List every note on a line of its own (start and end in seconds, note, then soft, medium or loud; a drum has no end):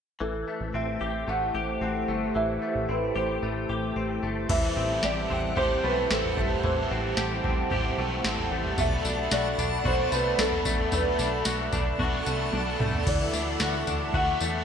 0.20 0.44 A1 loud
0.20 2.35 E3 medium
0.20 4.45 A3 medium
0.20 4.45 E4 medium
0.20 4.45 G4 medium
0.20 4.45 A4 medium
0.20 0.76 A4 medium
0.20 4.45 C5 medium
0.48 1.27 A3 soft
0.61 0.73 A1 medium
0.74 0.98 A1 medium
0.74 1.81 C4 medium
0.74 1.25 E5 medium
1.01 1.25 A1 medium
1.01 1.54 G4 medium
1.28 1.51 A1 medium
1.28 2.08 A3 soft
1.28 1.81 F#5 medium
1.54 1.78 A1 medium
1.54 3.15 G4 medium
1.81 2.05 A1 medium
1.81 2.88 C4 soft
1.81 2.37 F#5 medium
2.08 2.32 G1 medium
2.08 2.62 A3 soft
2.35 2.59 A1 loud
2.35 4.49 E3 medium
2.35 2.91 E5 medium
2.62 3.42 A3 medium
2.75 2.87 A1 medium
2.89 3.12 A1 medium
2.89 3.96 C4 medium
2.89 3.17 B4 medium
3.15 3.39 A1 loud
3.15 3.69 G4 medium
3.15 4.19 C5 medium
3.42 3.66 A1 medium
3.42 4.22 A3 medium
3.69 3.93 A1 medium
3.69 5.03 G4 medium
3.96 4.20 A1 medium
3.96 4.76 C4 soft
4.23 4.46 G1 medium
4.23 5.06 A3 soft
4.49 4.73 A1 loud
4.49 4.76 A2 medium
4.49 4.76 E3 medium
4.49 6.63 E3 medium
4.49 4.77 G3 medium
4.49 4.77 C4 medium
4.49 4.76 E4 medium
4.49 8.74 G4 medium
4.49 4.74 A4 medium
4.49 8.74 C5 medium
4.49 6.62 E5 medium
4.49 5.05 E5 medium
4.49 6.33 F#5 medium
4.49 8.74 A5 medium
4.49 kick loud
4.49 floor tom medium
4.49 crash medium
4.75 5.00 A1 medium
4.75 5.29 C4 medium
4.75 5.56 C4 soft
4.75 5.57 E4 soft
4.75 5.58 A4 soft
4.80 5.54 G3 soft
5.03 5.27 A1 loud
5.03 5.56 G4 medium
5.03 5.59 D5 medium
5.03 snare medium
5.30 5.54 A1 loud
5.30 6.09 C4 medium
5.30 floor tom medium
5.55 5.80 A1 loud
5.55 6.07 G3 medium
5.55 6.09 C4 medium
5.55 6.11 E4 medium
5.55 7.16 G4 medium
5.55 5.84 C5 loud
5.55 kick medium
5.55 floor tom medium
5.61 6.13 A4 medium
5.84 6.07 B1 medium
5.84 6.37 A3 medium
5.84 6.11 B4 medium
6.08 6.34 A1 loud
6.08 6.63 G3 medium
6.08 6.64 C4 medium
6.08 6.90 C4 medium
6.08 6.65 E4 medium
6.08 6.66 A4 medium
6.08 snare medium
6.14 6.66 A4 medium
6.24 floor tom medium
6.37 6.61 G1 medium
6.37 7.98 A3 medium
6.37 kick medium
6.50 floor tom medium
6.63 6.87 A1 loud
6.63 6.90 A2 medium
6.63 6.91 E3 medium
6.63 8.78 E3 medium
6.63 6.91 G3 medium
6.63 6.91 C4 medium
6.63 6.90 E4 medium
6.63 6.88 A4 medium
6.63 7.67 C5 medium
6.63 10.88 F#5 medium
6.63 floor tom medium
6.89 7.14 A1 loud
6.89 7.43 C4 soft
6.89 7.71 E4 soft
6.89 7.73 A4 soft
6.93 7.68 G3 soft
6.93 7.71 C4 soft
7.17 7.41 A1 medium
7.17 7.70 G4 medium
7.17 snare loud
7.44 7.68 A1 medium
7.44 8.24 C4 medium
7.44 9.01 D5 medium
7.44 kick medium
7.44 floor tom medium
7.70 7.95 A1 loud
7.70 8.22 G3 medium
7.70 8.24 C4 medium
7.70 8.84 G4 medium
7.70 kick medium
7.70 floor tom medium
7.74 8.26 E4 medium
7.74 8.28 A4 medium
7.98 8.21 B1 medium
7.98 8.51 A3 medium
8.23 8.48 A1 loud
8.23 8.76 G3 medium
8.23 8.84 C4 medium
8.23 8.78 C4 medium
8.23 8.79 E4 medium
8.23 snare loud
8.28 8.80 A4 medium
8.38 floor tom medium
8.51 8.75 A1 medium
8.51 8.78 A3 medium
8.64 floor tom medium
8.77 9.02 B1 loud
8.77 10.12 A3 medium
8.77 9.04 B3 medium
8.77 9.05 D4 medium
8.77 9.05 F#4 medium
8.77 14.64 A4 medium
8.77 9.02 A4 medium
8.77 13.02 D5 medium
8.77 9.34 E5 medium
8.77 13.02 B5 medium
8.77 kick loud
8.77 floor tom medium
8.77 tambourine medium
9.03 9.28 B1 loud
9.03 9.59 D4 medium
9.03 9.87 F#4 soft
9.03 9.87 A4 soft
9.03 tambourine medium
9.09 9.85 D4 soft
9.09 10.95 D5 medium
9.31 9.55 B1 medium
9.31 9.85 F#4 medium
9.31 9.87 D5 medium
9.31 snare loud
9.31 tambourine medium
9.58 9.82 B1 loud
9.58 10.39 D4 medium
9.58 floor tom medium
9.58 tambourine medium
9.84 10.09 B1 medium
9.84 10.36 B3 medium
9.84 10.39 D4 medium
9.84 11.45 F#4 medium
9.84 10.41 F#4 medium
9.84 10.13 C5 medium
9.84 kick medium
9.84 floor tom medium
9.89 10.42 A4 medium
10.12 10.35 C2 medium
10.12 10.65 A3 medium
10.12 10.40 B4 medium
10.12 tambourine medium
10.37 10.62 B1 medium
10.37 10.90 B3 medium
10.37 11.19 D4 medium
10.37 10.92 D4 medium
10.37 10.94 A4 medium
10.37 snare medium
10.37 tambourine medium
10.41 10.93 F#4 medium
10.41 10.94 A4 medium
10.52 floor tom medium
10.65 10.89 A1 medium
10.65 10.92 A3 medium
10.65 kick medium
10.65 tambourine medium
10.78 floor tom medium
10.91 11.16 B1 loud
10.91 12.26 A3 medium
10.91 11.19 B3 medium
10.91 11.19 D4 medium
10.91 11.19 F#4 medium
10.91 11.16 A4 medium
10.91 11.96 B4 medium
10.91 14.64 E5 medium
10.91 floor tom medium
10.91 tambourine medium
11.17 11.43 B1 medium
11.17 11.72 D4 soft
11.17 12.01 F#4 soft
11.17 12.01 A4 soft
11.17 tambourine medium
11.23 12.00 D4 soft
11.40 13.22 F#5 medium
11.45 11.70 B1 loud
11.45 11.99 F#4 medium
11.45 13.24 A5 medium
11.45 snare medium
11.45 tambourine medium
11.50 13.27 B5 medium
11.73 11.96 B1 medium
11.73 12.53 D4 medium
11.73 kick loud
11.73 floor tom medium
11.73 tambourine medium
11.98 12.23 B1 loud
11.98 12.50 B3 medium
11.98 12.53 D4 medium
11.98 13.60 F#4 medium
11.98 12.55 F#4 medium
11.98 kick medium
11.98 floor tom medium
12.03 12.56 A4 medium
12.26 12.50 C2 medium
12.26 12.79 A3 medium
12.26 tambourine medium
12.51 12.77 B1 medium
12.51 13.06 B3 medium
12.51 13.33 D4 soft
12.51 13.07 D4 medium
12.51 13.08 F#4 medium
12.51 high tom medium
12.57 13.08 A4 medium
12.80 13.03 C2 medium
12.80 14.41 A3 medium
12.80 mid tom medium
12.93 floor tom medium
13.05 13.30 D2 loud
13.05 13.33 D3 medium
13.05 14.64 E3 medium
13.05 13.33 A3 medium
13.05 13.34 E4 medium
13.05 13.33 F#4 medium
13.05 13.30 A4 medium
13.05 13.62 D5 medium
13.05 14.64 F#5 medium
13.05 14.64 D6 medium
13.05 kick loud
13.05 floor tom medium
13.05 crash medium
13.05 tambourine medium
13.31 13.57 D2 medium
13.31 13.87 D4 soft
13.31 14.16 F#4 soft
13.31 14.13 A4 soft
13.31 tambourine medium
13.37 14.13 E4 soft
13.53 14.64 E5 medium
13.60 13.84 D2 medium
13.60 14.14 F#4 medium
13.60 14.14 F#5 medium
13.60 snare loud
13.60 tambourine medium
13.87 14.11 D2 medium
13.87 14.64 D4 medium
13.87 floor tom medium
13.87 tambourine medium
14.12 14.37 D2 medium
14.12 14.64 A3 medium
14.12 14.64 E4 medium
14.12 14.64 F#4 medium
14.12 14.64 F#5 loud
14.12 kick medium
14.12 floor tom medium
14.16 14.64 F#4 medium
14.16 14.64 A4 medium
14.41 14.64 E2 medium
14.41 14.64 A3 medium
14.41 tambourine medium